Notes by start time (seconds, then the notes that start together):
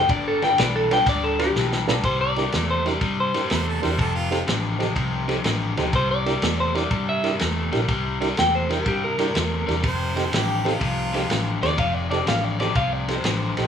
0.09 G1 G2 D3 D5, kick, ride
0.28 A4
0.42 G2 D3 D4 F4 A4 B4 G5, snare, ride
0.58 B1 G2 E3 D5, snare, ride
0.76 A4
0.91 G2 D3 D4 F4 A4 B4 G5, snare, ride
1.06 D2 G2 D3 D5, kick, snare, ride
1.24 A4
1.39 G2 D3 D4 F4 G4 A4 B4, snare, ride
1.56 B1 G2 E3, snare
1.72 snare
1.87 B1 G2 D3 D4 F4 A4 B4, snare
2.03 C2 C3 G3 C5, kick, ride
2.21 D5
2.36 C3 G3 D4 E4 G4 A#4, snare, ride
2.52 E2 C3 A3, snare, ride
2.70 C5
2.85 C3 G3 D4 E4 G4 A#4 D5, snare, ride
3.01 G2 C3 G3, kick, ride
3.20 C5
3.34 C3 G3 D4 E4 G4 A#4, snare, ride
3.50 E2 C3 A3 C5, snare, ride
3.68 A4
3.82 E2 C3 G3 D4 E4 G4 A#4 C5, snare, ride
3.98 F1 F2 C3 A4, kick, ride
4.15 F4
4.31 F2 C3 C4 D#4 G4 A4, snare, ride
4.47 A1 F2 D3, snare, ride
4.78 F2 C3 C4 D#4 G4 A4, snare, ride
4.95 C2 F2 C3, kick, ride
5.28 F2 C3 C4 D#4 G4 A4, snare, ride
5.44 A1 F2 D3, snare, ride
5.77 D2 F2 C3 C4 D#4 G4 A4, snare, ride
5.93 C2 C3 G3 C5, kick, ride
6.11 D5
6.26 C3 G3 D4 E4 G4 A#4, snare, ride
6.42 E2 C3 A3, snare, ride
6.60 C5
6.74 C3 G3 D4 E4 G4 A#4 D5, snare, ride
6.91 G2 C3 G3, kick, ride
7.09 E5
7.23 C3 G3 D4 E4 G4 A#4, snare, ride
7.39 E2 C3 A3, snare, ride
7.71 A#1 C3 G3 D4 E4 G4 A#4, snare, ride
7.88 C2 C3 G3, kick, ride
8.20 C3 G3 D4 E4 G4 A#4, snare, ride
8.37 E2 C3 A3 G5, snare, ride
8.55 C5
8.69 C3 G3 D4 E4 G4 A#4, snare, ride
8.85 G2 C3 G3 G4, kick, ride
9.04 A#4
9.18 C3 G3 D4 E4 G4 A#4, snare, ride
9.34 E2 C3 A3, snare, ride
9.66 E2 C3 G3 D4 E4 G4 A#4, snare, ride
9.82 F1 F2 C3 C5, kick, ride
10.14 F2 C3 C4 D#4 G4 A4, snare, ride
10.32 A1 F2 D3 G4, snare, ride
10.64 F2 C3 C4 D#4 F4 G4 A4, snare, ride
10.79 C2 F2 C3 F4, kick, ride
11.12 F2 C3 C4 D#4 G4 A4, snare, ride
11.29 A1 F2 D3, snare, ride
11.61 D#2 F2 C3 C4 D#4 G4 A4 D5, snare, ride
11.77 F1 F2 C3 F5, kick, ride
11.94 D5
12.10 F2 C3 C4 D#4 G4 A4 D5, snare, ride
12.26 A1 F2 D3 F5, snare, ride
12.44 D5
12.59 F2 C3 C4 D#4 G4 A4 D5, snare, ride
12.75 C2 F2 C3 F5, kick, ride
12.93 D5
13.08 F2 C3 C4 D#4 G4 A4 C5, snare, ride
13.24 A1 F2 D3, snare, ride
13.57 A#1 F2 C3 C4 D#4 G4 A4, snare, ride